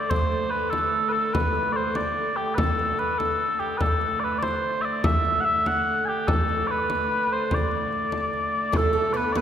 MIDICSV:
0, 0, Header, 1, 5, 480
1, 0, Start_track
1, 0, Tempo, 410959
1, 112, Time_signature, 6, 3, 24, 8
1, 10994, End_track
2, 0, Start_track
2, 0, Title_t, "Bagpipes"
2, 0, Program_c, 0, 109
2, 115, Note_on_c, 0, 72, 80
2, 581, Note_off_c, 0, 72, 0
2, 581, Note_on_c, 0, 71, 78
2, 820, Note_off_c, 0, 71, 0
2, 820, Note_on_c, 0, 69, 80
2, 1273, Note_off_c, 0, 69, 0
2, 1273, Note_on_c, 0, 71, 75
2, 1311, Note_off_c, 0, 71, 0
2, 1311, Note_on_c, 0, 69, 75
2, 1560, Note_off_c, 0, 69, 0
2, 1560, Note_on_c, 0, 71, 79
2, 2012, Note_off_c, 0, 71, 0
2, 2012, Note_on_c, 0, 74, 75
2, 2055, Note_off_c, 0, 74, 0
2, 2055, Note_on_c, 0, 72, 75
2, 2287, Note_off_c, 0, 72, 0
2, 2287, Note_on_c, 0, 74, 87
2, 2760, Note_off_c, 0, 74, 0
2, 2760, Note_on_c, 0, 67, 77
2, 2976, Note_off_c, 0, 67, 0
2, 2976, Note_on_c, 0, 71, 78
2, 3016, Note_off_c, 0, 71, 0
2, 3016, Note_on_c, 0, 69, 78
2, 3493, Note_off_c, 0, 69, 0
2, 3493, Note_on_c, 0, 71, 79
2, 3718, Note_off_c, 0, 71, 0
2, 3718, Note_on_c, 0, 69, 81
2, 4201, Note_off_c, 0, 69, 0
2, 4201, Note_on_c, 0, 67, 70
2, 4411, Note_off_c, 0, 67, 0
2, 4411, Note_on_c, 0, 71, 78
2, 4457, Note_off_c, 0, 71, 0
2, 4457, Note_on_c, 0, 69, 78
2, 4902, Note_off_c, 0, 69, 0
2, 4902, Note_on_c, 0, 74, 74
2, 4949, Note_off_c, 0, 74, 0
2, 4949, Note_on_c, 0, 71, 74
2, 5118, Note_off_c, 0, 71, 0
2, 5118, Note_on_c, 0, 74, 86
2, 5171, Note_off_c, 0, 74, 0
2, 5171, Note_on_c, 0, 72, 86
2, 5625, Note_off_c, 0, 72, 0
2, 5625, Note_on_c, 0, 76, 81
2, 5664, Note_off_c, 0, 76, 0
2, 5664, Note_on_c, 0, 74, 81
2, 5893, Note_off_c, 0, 74, 0
2, 5893, Note_on_c, 0, 76, 89
2, 6313, Note_off_c, 0, 76, 0
2, 6314, Note_on_c, 0, 78, 90
2, 6362, Note_off_c, 0, 78, 0
2, 6362, Note_on_c, 0, 76, 90
2, 6624, Note_off_c, 0, 76, 0
2, 6624, Note_on_c, 0, 78, 92
2, 7067, Note_off_c, 0, 78, 0
2, 7067, Note_on_c, 0, 80, 72
2, 7107, Note_off_c, 0, 80, 0
2, 7107, Note_on_c, 0, 67, 72
2, 7331, Note_off_c, 0, 67, 0
2, 7331, Note_on_c, 0, 69, 86
2, 7793, Note_off_c, 0, 69, 0
2, 7793, Note_on_c, 0, 74, 90
2, 7831, Note_off_c, 0, 74, 0
2, 7831, Note_on_c, 0, 71, 90
2, 8553, Note_off_c, 0, 71, 0
2, 8553, Note_on_c, 0, 72, 81
2, 8809, Note_off_c, 0, 72, 0
2, 8809, Note_on_c, 0, 74, 75
2, 10238, Note_off_c, 0, 74, 0
2, 10238, Note_on_c, 0, 69, 75
2, 10663, Note_off_c, 0, 69, 0
2, 10663, Note_on_c, 0, 74, 77
2, 10702, Note_off_c, 0, 74, 0
2, 10702, Note_on_c, 0, 71, 77
2, 10888, Note_off_c, 0, 71, 0
2, 10888, Note_on_c, 0, 74, 78
2, 10938, Note_off_c, 0, 74, 0
2, 10938, Note_on_c, 0, 71, 78
2, 10994, Note_off_c, 0, 71, 0
2, 10994, End_track
3, 0, Start_track
3, 0, Title_t, "Oud"
3, 0, Program_c, 1, 24
3, 10189, Note_on_c, 1, 57, 65
3, 10415, Note_off_c, 1, 57, 0
3, 10429, Note_on_c, 1, 57, 62
3, 10669, Note_off_c, 1, 57, 0
3, 10673, Note_on_c, 1, 59, 67
3, 10910, Note_off_c, 1, 59, 0
3, 10924, Note_on_c, 1, 59, 73
3, 10994, Note_off_c, 1, 59, 0
3, 10994, End_track
4, 0, Start_track
4, 0, Title_t, "Hurdy-gurdy"
4, 0, Program_c, 2, 110
4, 0, Note_on_c, 2, 50, 60
4, 0, Note_on_c, 2, 57, 61
4, 4439, Note_off_c, 2, 57, 0
4, 4439, Note_on_c, 2, 57, 58
4, 4444, Note_off_c, 2, 50, 0
4, 4444, Note_on_c, 2, 50, 60
4, 10204, Note_off_c, 2, 50, 0
4, 10204, Note_on_c, 2, 50, 61
4, 10218, Note_off_c, 2, 57, 0
4, 10218, Note_on_c, 2, 57, 63
4, 10994, Note_off_c, 2, 50, 0
4, 10994, Note_off_c, 2, 57, 0
4, 10994, End_track
5, 0, Start_track
5, 0, Title_t, "Frame drum"
5, 125, Note_on_c, 9, 64, 68
5, 241, Note_off_c, 9, 64, 0
5, 375, Note_on_c, 9, 64, 23
5, 492, Note_off_c, 9, 64, 0
5, 850, Note_on_c, 9, 64, 59
5, 967, Note_off_c, 9, 64, 0
5, 1572, Note_on_c, 9, 64, 74
5, 1689, Note_off_c, 9, 64, 0
5, 1811, Note_on_c, 9, 64, 23
5, 1928, Note_off_c, 9, 64, 0
5, 2280, Note_on_c, 9, 64, 59
5, 2397, Note_off_c, 9, 64, 0
5, 3014, Note_on_c, 9, 64, 80
5, 3130, Note_off_c, 9, 64, 0
5, 3260, Note_on_c, 9, 64, 26
5, 3377, Note_off_c, 9, 64, 0
5, 3492, Note_on_c, 9, 64, 23
5, 3609, Note_off_c, 9, 64, 0
5, 3738, Note_on_c, 9, 64, 56
5, 3855, Note_off_c, 9, 64, 0
5, 4204, Note_on_c, 9, 64, 22
5, 4321, Note_off_c, 9, 64, 0
5, 4445, Note_on_c, 9, 64, 69
5, 4561, Note_off_c, 9, 64, 0
5, 4688, Note_on_c, 9, 64, 23
5, 4805, Note_off_c, 9, 64, 0
5, 5169, Note_on_c, 9, 64, 59
5, 5285, Note_off_c, 9, 64, 0
5, 5886, Note_on_c, 9, 64, 81
5, 6003, Note_off_c, 9, 64, 0
5, 6132, Note_on_c, 9, 64, 26
5, 6249, Note_off_c, 9, 64, 0
5, 6615, Note_on_c, 9, 64, 62
5, 6731, Note_off_c, 9, 64, 0
5, 7335, Note_on_c, 9, 64, 81
5, 7452, Note_off_c, 9, 64, 0
5, 7582, Note_on_c, 9, 64, 27
5, 7699, Note_off_c, 9, 64, 0
5, 8057, Note_on_c, 9, 64, 59
5, 8174, Note_off_c, 9, 64, 0
5, 8773, Note_on_c, 9, 64, 72
5, 8890, Note_off_c, 9, 64, 0
5, 9008, Note_on_c, 9, 64, 23
5, 9125, Note_off_c, 9, 64, 0
5, 9255, Note_on_c, 9, 64, 23
5, 9372, Note_off_c, 9, 64, 0
5, 9488, Note_on_c, 9, 64, 57
5, 9605, Note_off_c, 9, 64, 0
5, 9732, Note_on_c, 9, 64, 25
5, 9849, Note_off_c, 9, 64, 0
5, 10200, Note_on_c, 9, 64, 79
5, 10317, Note_off_c, 9, 64, 0
5, 10454, Note_on_c, 9, 64, 26
5, 10571, Note_off_c, 9, 64, 0
5, 10928, Note_on_c, 9, 64, 68
5, 10994, Note_off_c, 9, 64, 0
5, 10994, End_track
0, 0, End_of_file